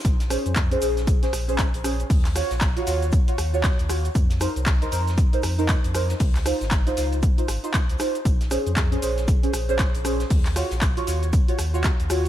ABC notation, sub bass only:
X:1
M:4/4
L:1/16
Q:"Swing 16ths" 1/4=117
K:Bbm
V:1 name="Sub bass" clef=bass
B,,,2 z F,,2 z B,,,2 z2 B,,,2 z B,,,2 z | E,,2 z B,,,2 z E,,2 z2 E,,2 z E,,2 z | F,,2 z C,,2 z F,,2 z2 F,,2 z F,,2 z | D,,2 z A,,,2 z D,,2 z2 A,,, z2 D,, z2 |
B,,,2 z F,,2 z B,,,2 z2 B,,,2 z B,,,2 z | E,,2 z B,,,2 z E,,2 z2 E,,2 z E,,2 z |]